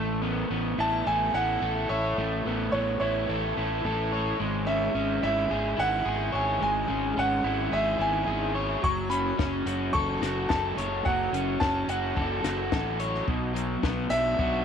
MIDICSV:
0, 0, Header, 1, 5, 480
1, 0, Start_track
1, 0, Key_signature, 3, "major"
1, 0, Tempo, 555042
1, 1883, Time_signature, 4, 2, 24, 8
1, 12667, End_track
2, 0, Start_track
2, 0, Title_t, "Upright piano"
2, 0, Program_c, 0, 0
2, 693, Note_on_c, 0, 81, 86
2, 923, Note_on_c, 0, 80, 93
2, 935, Note_off_c, 0, 81, 0
2, 1162, Note_on_c, 0, 78, 85
2, 1170, Note_off_c, 0, 80, 0
2, 1636, Note_on_c, 0, 76, 73
2, 1657, Note_off_c, 0, 78, 0
2, 2354, Note_on_c, 0, 73, 79
2, 2382, Note_off_c, 0, 76, 0
2, 2579, Note_off_c, 0, 73, 0
2, 2592, Note_on_c, 0, 73, 76
2, 3044, Note_off_c, 0, 73, 0
2, 4035, Note_on_c, 0, 76, 72
2, 4514, Note_off_c, 0, 76, 0
2, 4527, Note_on_c, 0, 76, 75
2, 5012, Note_on_c, 0, 78, 94
2, 5018, Note_off_c, 0, 76, 0
2, 5492, Note_on_c, 0, 80, 73
2, 5500, Note_off_c, 0, 78, 0
2, 5717, Note_off_c, 0, 80, 0
2, 5730, Note_on_c, 0, 80, 86
2, 6216, Note_on_c, 0, 78, 82
2, 6219, Note_off_c, 0, 80, 0
2, 6686, Note_on_c, 0, 76, 79
2, 6702, Note_off_c, 0, 78, 0
2, 6929, Note_off_c, 0, 76, 0
2, 6929, Note_on_c, 0, 80, 84
2, 7643, Note_on_c, 0, 85, 96
2, 7665, Note_off_c, 0, 80, 0
2, 7868, Note_on_c, 0, 83, 85
2, 7887, Note_off_c, 0, 85, 0
2, 8319, Note_off_c, 0, 83, 0
2, 8587, Note_on_c, 0, 85, 95
2, 9070, Note_on_c, 0, 81, 78
2, 9086, Note_off_c, 0, 85, 0
2, 9557, Note_on_c, 0, 78, 82
2, 9568, Note_off_c, 0, 81, 0
2, 10032, Note_on_c, 0, 81, 88
2, 10051, Note_off_c, 0, 78, 0
2, 10282, Note_off_c, 0, 81, 0
2, 10287, Note_on_c, 0, 78, 70
2, 11209, Note_off_c, 0, 78, 0
2, 12194, Note_on_c, 0, 76, 111
2, 12667, Note_off_c, 0, 76, 0
2, 12667, End_track
3, 0, Start_track
3, 0, Title_t, "Overdriven electric guitar"
3, 0, Program_c, 1, 29
3, 0, Note_on_c, 1, 57, 67
3, 188, Note_on_c, 1, 59, 60
3, 429, Note_off_c, 1, 59, 0
3, 439, Note_on_c, 1, 59, 58
3, 677, Note_on_c, 1, 64, 59
3, 925, Note_on_c, 1, 69, 71
3, 1154, Note_off_c, 1, 64, 0
3, 1158, Note_on_c, 1, 64, 58
3, 1161, Note_off_c, 1, 57, 0
3, 1385, Note_off_c, 1, 69, 0
3, 1395, Note_on_c, 1, 69, 64
3, 1638, Note_on_c, 1, 73, 66
3, 1642, Note_off_c, 1, 59, 0
3, 1885, Note_on_c, 1, 57, 73
3, 2129, Note_on_c, 1, 59, 63
3, 2355, Note_off_c, 1, 59, 0
3, 2366, Note_on_c, 1, 59, 61
3, 2600, Note_off_c, 1, 69, 0
3, 2602, Note_off_c, 1, 64, 0
3, 2605, Note_on_c, 1, 64, 60
3, 2852, Note_on_c, 1, 69, 75
3, 3085, Note_off_c, 1, 57, 0
3, 3086, Note_off_c, 1, 64, 0
3, 3089, Note_on_c, 1, 64, 57
3, 3318, Note_off_c, 1, 69, 0
3, 3328, Note_on_c, 1, 69, 64
3, 3561, Note_off_c, 1, 73, 0
3, 3565, Note_off_c, 1, 59, 0
3, 3565, Note_on_c, 1, 73, 61
3, 3801, Note_on_c, 1, 56, 68
3, 3806, Note_off_c, 1, 69, 0
3, 4038, Note_on_c, 1, 61, 62
3, 4279, Note_off_c, 1, 61, 0
3, 4283, Note_on_c, 1, 61, 61
3, 4514, Note_off_c, 1, 64, 0
3, 4517, Note_on_c, 1, 64, 58
3, 4762, Note_on_c, 1, 68, 69
3, 4975, Note_off_c, 1, 64, 0
3, 4986, Note_on_c, 1, 64, 60
3, 5001, Note_off_c, 1, 56, 0
3, 5224, Note_off_c, 1, 68, 0
3, 5234, Note_on_c, 1, 68, 70
3, 5467, Note_off_c, 1, 73, 0
3, 5470, Note_on_c, 1, 73, 65
3, 5717, Note_on_c, 1, 56, 64
3, 5945, Note_off_c, 1, 61, 0
3, 5949, Note_on_c, 1, 61, 65
3, 6192, Note_off_c, 1, 64, 0
3, 6195, Note_off_c, 1, 61, 0
3, 6199, Note_on_c, 1, 61, 61
3, 6436, Note_off_c, 1, 68, 0
3, 6436, Note_on_c, 1, 64, 59
3, 6677, Note_on_c, 1, 68, 72
3, 6898, Note_off_c, 1, 64, 0
3, 6908, Note_on_c, 1, 64, 61
3, 6917, Note_off_c, 1, 56, 0
3, 7143, Note_off_c, 1, 68, 0
3, 7153, Note_on_c, 1, 68, 63
3, 7392, Note_off_c, 1, 73, 0
3, 7395, Note_on_c, 1, 73, 62
3, 7633, Note_off_c, 1, 64, 0
3, 7633, Note_on_c, 1, 54, 66
3, 7635, Note_off_c, 1, 68, 0
3, 7864, Note_off_c, 1, 61, 0
3, 7868, Note_on_c, 1, 61, 65
3, 8102, Note_off_c, 1, 61, 0
3, 8112, Note_on_c, 1, 61, 66
3, 8354, Note_on_c, 1, 66, 57
3, 8596, Note_on_c, 1, 69, 68
3, 8830, Note_off_c, 1, 66, 0
3, 8834, Note_on_c, 1, 66, 58
3, 9070, Note_off_c, 1, 69, 0
3, 9080, Note_on_c, 1, 69, 64
3, 9314, Note_off_c, 1, 61, 0
3, 9314, Note_off_c, 1, 73, 0
3, 9317, Note_on_c, 1, 73, 62
3, 9558, Note_off_c, 1, 54, 0
3, 9561, Note_on_c, 1, 54, 65
3, 9800, Note_on_c, 1, 61, 62
3, 10032, Note_off_c, 1, 61, 0
3, 10043, Note_on_c, 1, 61, 60
3, 10276, Note_off_c, 1, 66, 0
3, 10279, Note_off_c, 1, 69, 0
3, 10279, Note_on_c, 1, 66, 58
3, 10518, Note_off_c, 1, 73, 0
3, 10519, Note_on_c, 1, 69, 73
3, 10755, Note_off_c, 1, 66, 0
3, 10758, Note_on_c, 1, 66, 59
3, 10996, Note_off_c, 1, 69, 0
3, 11006, Note_on_c, 1, 69, 66
3, 11240, Note_on_c, 1, 73, 62
3, 11241, Note_off_c, 1, 61, 0
3, 11479, Note_on_c, 1, 47, 67
3, 11480, Note_off_c, 1, 73, 0
3, 11483, Note_off_c, 1, 69, 0
3, 11708, Note_off_c, 1, 54, 0
3, 11712, Note_on_c, 1, 54, 61
3, 11962, Note_on_c, 1, 59, 62
3, 12198, Note_off_c, 1, 66, 0
3, 12201, Note_on_c, 1, 62, 57
3, 12447, Note_on_c, 1, 66, 75
3, 12667, Note_off_c, 1, 47, 0
3, 12667, Note_off_c, 1, 54, 0
3, 12667, Note_off_c, 1, 59, 0
3, 12667, Note_off_c, 1, 62, 0
3, 12667, Note_off_c, 1, 66, 0
3, 12667, End_track
4, 0, Start_track
4, 0, Title_t, "Fingered electric bass"
4, 0, Program_c, 2, 33
4, 0, Note_on_c, 2, 33, 83
4, 368, Note_off_c, 2, 33, 0
4, 434, Note_on_c, 2, 33, 78
4, 644, Note_off_c, 2, 33, 0
4, 675, Note_on_c, 2, 33, 81
4, 884, Note_off_c, 2, 33, 0
4, 921, Note_on_c, 2, 33, 80
4, 1128, Note_off_c, 2, 33, 0
4, 1154, Note_on_c, 2, 33, 70
4, 1364, Note_off_c, 2, 33, 0
4, 1399, Note_on_c, 2, 33, 82
4, 1607, Note_off_c, 2, 33, 0
4, 1640, Note_on_c, 2, 33, 81
4, 1848, Note_off_c, 2, 33, 0
4, 1883, Note_on_c, 2, 33, 92
4, 2089, Note_off_c, 2, 33, 0
4, 2121, Note_on_c, 2, 33, 69
4, 2328, Note_off_c, 2, 33, 0
4, 2359, Note_on_c, 2, 33, 76
4, 2567, Note_off_c, 2, 33, 0
4, 2598, Note_on_c, 2, 33, 81
4, 2806, Note_off_c, 2, 33, 0
4, 2845, Note_on_c, 2, 33, 77
4, 3050, Note_off_c, 2, 33, 0
4, 3090, Note_on_c, 2, 33, 76
4, 3293, Note_off_c, 2, 33, 0
4, 3325, Note_on_c, 2, 33, 88
4, 3736, Note_off_c, 2, 33, 0
4, 3804, Note_on_c, 2, 32, 84
4, 4216, Note_off_c, 2, 32, 0
4, 4277, Note_on_c, 2, 32, 75
4, 4486, Note_off_c, 2, 32, 0
4, 4521, Note_on_c, 2, 32, 85
4, 4728, Note_off_c, 2, 32, 0
4, 4761, Note_on_c, 2, 32, 76
4, 4967, Note_off_c, 2, 32, 0
4, 5000, Note_on_c, 2, 32, 75
4, 5207, Note_off_c, 2, 32, 0
4, 5238, Note_on_c, 2, 32, 87
4, 5445, Note_off_c, 2, 32, 0
4, 5478, Note_on_c, 2, 32, 72
4, 5686, Note_off_c, 2, 32, 0
4, 5721, Note_on_c, 2, 32, 83
4, 5927, Note_off_c, 2, 32, 0
4, 5961, Note_on_c, 2, 32, 76
4, 6167, Note_off_c, 2, 32, 0
4, 6202, Note_on_c, 2, 32, 84
4, 6407, Note_off_c, 2, 32, 0
4, 6432, Note_on_c, 2, 32, 82
4, 6641, Note_off_c, 2, 32, 0
4, 6675, Note_on_c, 2, 32, 72
4, 6883, Note_off_c, 2, 32, 0
4, 6909, Note_on_c, 2, 32, 83
4, 7119, Note_off_c, 2, 32, 0
4, 7151, Note_on_c, 2, 32, 83
4, 7566, Note_off_c, 2, 32, 0
4, 7641, Note_on_c, 2, 30, 87
4, 8052, Note_off_c, 2, 30, 0
4, 8119, Note_on_c, 2, 30, 75
4, 8325, Note_off_c, 2, 30, 0
4, 8351, Note_on_c, 2, 30, 86
4, 8560, Note_off_c, 2, 30, 0
4, 8601, Note_on_c, 2, 30, 78
4, 8806, Note_off_c, 2, 30, 0
4, 8835, Note_on_c, 2, 30, 80
4, 9042, Note_off_c, 2, 30, 0
4, 9080, Note_on_c, 2, 30, 85
4, 9285, Note_off_c, 2, 30, 0
4, 9310, Note_on_c, 2, 30, 73
4, 9519, Note_off_c, 2, 30, 0
4, 9563, Note_on_c, 2, 30, 85
4, 9767, Note_off_c, 2, 30, 0
4, 9792, Note_on_c, 2, 30, 77
4, 10001, Note_off_c, 2, 30, 0
4, 10041, Note_on_c, 2, 30, 79
4, 10246, Note_off_c, 2, 30, 0
4, 10273, Note_on_c, 2, 30, 88
4, 10481, Note_off_c, 2, 30, 0
4, 10521, Note_on_c, 2, 30, 84
4, 10726, Note_off_c, 2, 30, 0
4, 10757, Note_on_c, 2, 30, 86
4, 10964, Note_off_c, 2, 30, 0
4, 11002, Note_on_c, 2, 33, 87
4, 11414, Note_off_c, 2, 33, 0
4, 11481, Note_on_c, 2, 35, 86
4, 11893, Note_off_c, 2, 35, 0
4, 11959, Note_on_c, 2, 35, 73
4, 12166, Note_off_c, 2, 35, 0
4, 12196, Note_on_c, 2, 35, 81
4, 12405, Note_off_c, 2, 35, 0
4, 12443, Note_on_c, 2, 35, 75
4, 12649, Note_off_c, 2, 35, 0
4, 12667, End_track
5, 0, Start_track
5, 0, Title_t, "Drums"
5, 7642, Note_on_c, 9, 36, 88
5, 7728, Note_off_c, 9, 36, 0
5, 7880, Note_on_c, 9, 42, 76
5, 7966, Note_off_c, 9, 42, 0
5, 8122, Note_on_c, 9, 36, 109
5, 8122, Note_on_c, 9, 38, 96
5, 8209, Note_off_c, 9, 36, 0
5, 8209, Note_off_c, 9, 38, 0
5, 8361, Note_on_c, 9, 42, 67
5, 8448, Note_off_c, 9, 42, 0
5, 8603, Note_on_c, 9, 36, 92
5, 8690, Note_off_c, 9, 36, 0
5, 8845, Note_on_c, 9, 38, 65
5, 8845, Note_on_c, 9, 42, 74
5, 8932, Note_off_c, 9, 38, 0
5, 8932, Note_off_c, 9, 42, 0
5, 9081, Note_on_c, 9, 38, 111
5, 9082, Note_on_c, 9, 36, 105
5, 9167, Note_off_c, 9, 38, 0
5, 9169, Note_off_c, 9, 36, 0
5, 9325, Note_on_c, 9, 42, 75
5, 9411, Note_off_c, 9, 42, 0
5, 9564, Note_on_c, 9, 36, 98
5, 9650, Note_off_c, 9, 36, 0
5, 9808, Note_on_c, 9, 42, 79
5, 9894, Note_off_c, 9, 42, 0
5, 10043, Note_on_c, 9, 36, 104
5, 10045, Note_on_c, 9, 38, 104
5, 10129, Note_off_c, 9, 36, 0
5, 10131, Note_off_c, 9, 38, 0
5, 10281, Note_on_c, 9, 42, 76
5, 10368, Note_off_c, 9, 42, 0
5, 10523, Note_on_c, 9, 36, 81
5, 10609, Note_off_c, 9, 36, 0
5, 10762, Note_on_c, 9, 38, 70
5, 10762, Note_on_c, 9, 42, 74
5, 10848, Note_off_c, 9, 38, 0
5, 10848, Note_off_c, 9, 42, 0
5, 11001, Note_on_c, 9, 38, 107
5, 11002, Note_on_c, 9, 36, 99
5, 11088, Note_off_c, 9, 36, 0
5, 11088, Note_off_c, 9, 38, 0
5, 11240, Note_on_c, 9, 42, 79
5, 11326, Note_off_c, 9, 42, 0
5, 11368, Note_on_c, 9, 38, 30
5, 11455, Note_off_c, 9, 38, 0
5, 11483, Note_on_c, 9, 36, 99
5, 11570, Note_off_c, 9, 36, 0
5, 11729, Note_on_c, 9, 42, 76
5, 11815, Note_off_c, 9, 42, 0
5, 11963, Note_on_c, 9, 36, 102
5, 11965, Note_on_c, 9, 38, 99
5, 12049, Note_off_c, 9, 36, 0
5, 12051, Note_off_c, 9, 38, 0
5, 12206, Note_on_c, 9, 42, 76
5, 12292, Note_off_c, 9, 42, 0
5, 12444, Note_on_c, 9, 36, 93
5, 12531, Note_off_c, 9, 36, 0
5, 12667, End_track
0, 0, End_of_file